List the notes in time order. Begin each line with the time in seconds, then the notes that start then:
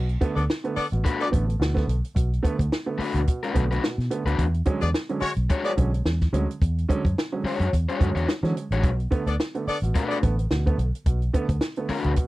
Already playing: B1
0.09 closed hi-hat
0.21 D3 A3 B3, kick, closed hi-hat
0.35 D2 A3 B3 D4 A4 D5, closed hi-hat
0.50 snare
0.64 D3 A3 B3, closed hi-hat
0.76 B3 D4 A4 D5, muted fingered electric bass stroke, open hi-hat
0.92 A1 B2, closed hi-hat
1.04 B2 A3 D4 F#4 B4, kick, closed hi-hat
1.20 B3 D4 A4 D5
1.31 A1 D3 A3 B3, kick, closed hi-hat
1.47 A3 B3, closed hi-hat
1.59 D2 B2, snare
1.74 D3 A3 B3, kick, snare
1.86 B1 A3 B3, closed hi-hat
2.04 closed hi-hat
2.15 B1 B2, kick, closed hi-hat
2.33 closed hi-hat
2.43 D3 A3 B3, kick, closed hi-hat
2.58 D2 A3 B3, kick, closed hi-hat
2.72 snare
2.86 D3 A3 B3
2.98 A3 D4 F#4 B4, muted fingered electric bass stroke, open hi-hat
3.14 D2 B2, closed hi-hat
3.27 B2, kick, closed hi-hat
3.43 A3 D4 F#4 B4, closed hi-hat
3.54 B1 D3 A3 B3, kick, closed hi-hat
3.70 A3 B3 D4 F#4 B4, closed hi-hat
3.83 B2, snare
3.98 B2, snare, closed hi-hat
4.10 D3 A3 B3, closed hi-hat
4.26 D2 A3 B3 D4 F#4 B4, closed hi-hat
4.38 E2, kick, closed hi-hat
4.54 closed hi-hat
4.65 D3 F#3 G#3 C#4, kick, closed hi-hat
4.81 E2 G#3 B3 C#4 D4 G#4 D5, closed hi-hat
4.94 snare
5.09 D3 F#3 G#3 C#4, closed hi-hat
5.21 G#3 C#4 F#4 C#5, muted fingered electric bass stroke, open hi-hat
5.36 B1, closed hi-hat
5.49 G#3 D4 F#4 C#5, kick, closed hi-hat
5.64 B3 D4 G#4 D5, closed hi-hat
5.77 B1 D3 F#3 G#3 C#4, kick, closed hi-hat
5.93 G#3 C#4, closed hi-hat
6.05 E2 G#3 C#4, snare
6.21 kick, snare, closed hi-hat
6.33 D2 D3 F#3 G#3 C#4, closed hi-hat
6.51 closed hi-hat
6.62 E2, kick, closed hi-hat
6.78 closed hi-hat
6.89 D3 F#3 G#3 C#4, kick, closed hi-hat
7.04 F#2 G#3 C#4, kick, closed hi-hat
7.18 snare
7.32 D3 F#3 G#3 C#4
7.44 G#3 D4 F#4 C#5, muted fingered electric bass stroke, open hi-hat
7.60 F#2, closed hi-hat
7.73 E2, kick, closed hi-hat
7.89 G#3 D4 F#4 C#5, closed hi-hat
8.00 F#2 D3 F#3 G#3 C#4, kick, closed hi-hat
8.15 E2 G#3 C#4 D4 F#4 C#5, closed hi-hat
8.29 snare
8.43 D3 E3 F#3 G#3 C#4, snare, closed hi-hat
8.56 G#3 C#4, closed hi-hat
8.71 A1 G#3 D4 F#4 C#5, closed hi-hat
8.83 B1 B2, kick, closed hi-hat
9.00 closed hi-hat
9.11 D3 A3 B3, kick, closed hi-hat
9.27 D2 A3 B3 D4 A4 D5, closed hi-hat
9.40 snare
9.55 D3 A3 B3, closed hi-hat
9.67 B3 D4 A4 D5, muted fingered electric bass stroke, open hi-hat
9.82 A1 B2, closed hi-hat
9.95 B2 A3 D4 F#4 B4, kick, closed hi-hat
10.09 B3 D4 A4 D5, closed hi-hat
10.22 A1 D3 A3 B3, kick, closed hi-hat
10.39 A3 B3, closed hi-hat
10.51 D2 B2, snare
10.66 D3 A3 B3, kick, closed hi-hat
10.78 B1 A3 B3, closed hi-hat
10.95 closed hi-hat
11.06 B1 B2, kick, closed hi-hat
11.22 closed hi-hat
11.33 D3 A3 B3, kick, closed hi-hat
11.48 D2 A3 B3, kick, closed hi-hat
11.61 snare
11.76 D3 A3 B3, closed hi-hat
11.89 A3 D4 F#4 B4, muted fingered electric bass stroke, open hi-hat
12.04 D2 B2, closed hi-hat
12.16 B2, kick, closed hi-hat